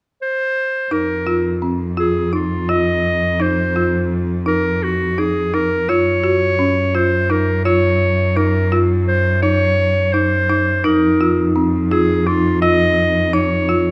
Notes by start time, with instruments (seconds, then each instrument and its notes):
0.22 clarinet C5
0.91 cello F2, marimba D#4, clarinet A#4
1.27 marimba F4
1.62 marimba C4
1.97 marimba F4, clarinet G#4
2.33 marimba D#4, clarinet F4
2.69 marimba F4, clarinet D#5
3.40 marimba D#4, clarinet C5
3.76 marimba F4
4.46 marimba D#4, clarinet A#4
4.83 clarinet F#4
5.18 marimba D#4, clarinet G#4
5.54 marimba D#4, clarinet A#4
5.88 cello F#2, marimba F4, clarinet C#5
6.24 marimba F#4
6.59 marimba C#4
6.95 marimba F4, clarinet C5
7.30 marimba D#4, clarinet A#4
7.65 marimba F4, clarinet C#5
8.36 marimba D#4, clarinet A#4
8.72 marimba F4
9.08 clarinet C5
9.42 marimba D#4, clarinet C#5
10.13 marimba D#4, clarinet C5
10.49 marimba D#4
10.84 cello F2, marimba D#4, vibraphone D#4, clarinet A#4
11.21 marimba F4
11.56 marimba C4
11.91 marimba F4, clarinet G#4
12.27 marimba D#4, clarinet F4
12.62 marimba F4, clarinet D#5
13.33 marimba D#4, clarinet C#5
13.69 marimba F4